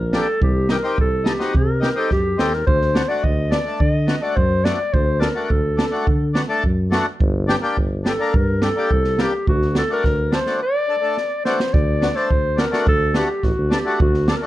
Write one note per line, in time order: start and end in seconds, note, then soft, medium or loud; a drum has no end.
0.00 0.19 A#1 medium
0.00 0.18 A#4 medium
0.12 0.27 A#3 medium
0.12 0.27 D4 medium
0.12 0.28 G4 medium
0.12 0.42 A4 medium
0.12 snare medium
0.42 0.76 C2 loud
0.42 0.73 G4 medium
0.42 kick medium
0.69 0.76 D#4 medium
0.69 0.77 G4 medium
0.69 0.99 A#4 medium
0.69 snare medium
0.83 0.97 C4 medium
0.83 0.98 D#4 medium
0.83 0.98 G4 medium
0.83 snare soft
0.98 1.32 C2 medium
0.98 1.29 A4 medium
0.98 kick medium
1.24 1.32 D#4 medium
1.24 1.58 G4 medium
1.24 1.33 A4 medium
1.24 snare medium
1.38 1.53 C4 medium
1.38 1.54 D#4 medium
1.38 1.54 F#4 medium
1.38 snare medium
1.55 1.88 C3 medium
1.55 2.00 A#4 medium
1.55 kick medium
1.80 1.89 D#4 medium
1.80 1.89 G4 medium
1.80 snare medium
1.95 2.10 C4 medium
1.95 2.10 D#4 medium
1.95 2.11 G4 medium
1.95 2.12 A4 medium
2.10 2.36 F#2 medium
2.10 2.41 G4 medium
2.10 kick medium
2.10 snare soft
2.37 2.65 D#2 medium
2.37 2.52 C4 medium
2.37 2.53 D#4 medium
2.37 2.53 G4 medium
2.37 2.55 A4 medium
2.37 snare medium
2.53 2.66 A#4 medium
2.53 snare soft
2.66 3.01 D2 loud
2.66 3.10 C5 medium
2.66 kick medium
2.81 snare soft
2.94 3.02 D4 medium
2.94 3.03 F#4 medium
2.94 snare medium
3.08 3.23 A3 medium
3.08 3.23 D4 medium
3.08 3.24 F#4 medium
3.08 3.25 D5 medium
3.23 3.58 D2 medium
3.23 3.53 D#5 medium
3.23 kick medium
3.50 3.58 D4 medium
3.50 3.59 A4 medium
3.50 3.80 D5 medium
3.50 snare medium
3.64 3.80 A3 medium
3.64 3.80 D4 medium
3.64 3.81 A4 medium
3.80 4.14 D3 medium
3.80 3.91 D5 loud
3.80 kick medium
3.91 4.24 D#5 loud
4.06 4.15 D4 medium
4.06 4.16 F#4 medium
4.06 snare medium
4.21 4.36 A3 medium
4.21 4.37 D4 medium
4.21 4.37 F#4 medium
4.21 4.37 D5 medium
4.35 4.71 F#2 medium
4.35 4.66 C5 loud
4.35 kick medium
4.63 4.79 A3 medium
4.63 4.79 D4 medium
4.63 4.80 F#4 medium
4.63 4.95 D5 medium
4.63 snare medium
4.93 5.28 D2 medium
4.93 5.22 C5 medium
4.93 kick medium
5.20 5.28 D4 medium
5.20 5.29 A4 medium
5.20 5.51 A#4 medium
5.20 snare medium
5.34 5.49 A3 medium
5.34 5.50 D4 medium
5.34 5.50 F#4 medium
5.50 5.84 D2 medium
5.50 6.35 A4 medium
5.50 kick medium
5.77 5.85 D4 medium
5.77 5.86 A4 medium
5.77 snare medium
5.91 6.06 A3 medium
5.91 6.06 D4 medium
5.91 6.07 F#4 medium
6.07 6.41 D3 medium
6.07 kick medium
6.34 6.42 D4 medium
6.34 6.43 F#4 medium
6.34 snare medium
6.48 6.63 A3 medium
6.48 6.64 D4 medium
6.48 6.64 A4 medium
6.64 6.98 F#2 medium
6.64 kick medium
6.90 7.05 A3 medium
6.90 7.06 D4 medium
6.90 7.06 F#4 medium
6.90 snare medium
7.20 7.54 G1 loud
7.20 kick medium
7.48 7.55 D4 medium
7.48 7.56 G4 loud
7.48 snare medium
7.62 7.76 A#3 medium
7.62 7.77 D4 medium
7.62 7.77 G4 medium
7.62 snare soft
7.77 8.11 G1 medium
7.77 kick medium
8.04 8.12 D4 medium
8.04 8.13 G4 medium
8.04 8.36 A4 medium
8.04 snare medium
8.19 8.34 A#3 medium
8.19 8.34 D4 medium
8.19 8.34 A#4 medium
8.34 8.68 G2 medium
8.34 8.64 A#4 medium
8.34 kick medium
8.62 8.69 D4 medium
8.62 8.70 G4 medium
8.62 9.23 A4 medium
8.62 snare medium
8.76 8.90 A#3 medium
8.76 8.91 D4 medium
8.76 8.91 G4 medium
8.91 9.25 C2 medium
8.91 kick medium
9.04 snare soft
9.18 9.33 A#3 medium
9.18 9.33 D4 medium
9.18 9.34 G4 medium
9.18 9.48 G4 medium
9.18 snare medium
9.47 9.82 D2 loud
9.47 9.74 F#4 medium
9.47 kick medium
9.62 snare soft
9.75 9.82 D4 medium
9.75 9.83 F#4 medium
9.75 9.90 A4 medium
9.75 snare medium
9.89 10.03 A3 medium
9.89 10.04 D4 medium
9.89 10.04 F#4 medium
9.89 10.36 A#4 medium
10.04 10.38 D2 medium
10.04 kick medium
10.04 snare soft
10.31 10.39 D4 medium
10.31 10.40 A4 medium
10.31 10.62 C5 medium
10.31 snare medium
10.45 10.60 A3 medium
10.45 10.61 D4 medium
10.45 10.61 F#4 medium
10.45 snare soft
10.62 11.42 D5 loud
10.88 10.95 D4 medium
10.88 10.96 A4 medium
11.01 11.16 A3 medium
11.01 11.17 D4 medium
11.01 11.17 A4 medium
11.17 snare soft
11.45 11.59 A3 medium
11.45 11.60 D4 medium
11.45 11.60 F#4 medium
11.45 11.75 C5 medium
11.45 snare medium
11.60 snare medium
11.73 12.08 D2 loud
11.73 12.18 D5 medium
11.73 kick medium
12.01 12.08 D4 medium
12.01 12.09 F#4 medium
12.01 snare medium
12.14 12.29 A3 medium
12.14 12.30 D4 medium
12.14 12.30 A4 medium
12.14 12.61 C5 medium
12.14 snare soft
12.30 12.64 D2 medium
12.30 kick medium
12.57 12.65 D4 medium
12.57 12.66 F#4 medium
12.57 12.87 A#4 medium
12.57 snare medium
12.71 12.86 A3 medium
12.71 12.86 D4 medium
12.71 12.87 F#4 medium
12.71 snare medium
12.87 13.21 D2 medium
12.87 13.18 A4 loud
12.87 kick medium
13.13 13.28 A3 medium
13.13 13.29 D4 medium
13.13 13.29 F#4 medium
13.13 13.46 G4 medium
13.13 snare medium
13.43 13.52 A1 medium
13.43 13.75 F#4 medium
13.43 kick medium
13.43 snare soft
13.58 13.75 D2 medium
13.70 13.78 D4 medium
13.70 14.01 G4 medium
13.70 13.79 A4 medium
13.70 snare medium
13.84 13.99 A3 medium
13.84 14.00 D4 soft
13.84 14.00 F#4 medium
14.00 14.34 D2 loud
14.00 14.27 F#4 medium
14.00 kick medium
14.14 snare soft
14.28 14.35 D4 medium
14.28 14.38 A4 medium
14.28 14.36 A4 medium
14.28 snare medium
14.37 14.45 A#4 medium
14.41 14.47 A3 medium
14.41 14.47 D4 medium
14.41 14.47 F#4 medium
14.41 14.47 A4 medium